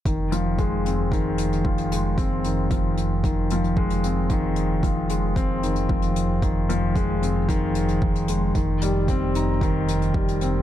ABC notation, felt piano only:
X:1
M:4/4
L:1/8
Q:1/4=113
K:Fm
V:1 name="Felt piano" clef=bass
E, F, A, C E, z F, A, | C E, F, z E, F, A, C | E, z F, A, C E, F, z | E, F, A, C E, z E, A, |
E, G, C E E, z G, C |]